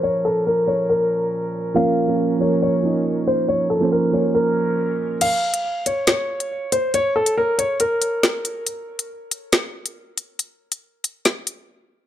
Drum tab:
CC |----------------|----------------|----------------|x---------------|
HH |----------------|----------------|----------------|x--x--x-x--x--x-|
SD |----------------|----------------|----------------|--------o-------|

CC |----------------|----------------|----------------|
HH |x--x--x-x-x-x-x-|x--x--x-x--x--x-|x--x--x-x-x-----|
SD |------------o---|--------o-------|--------o-------|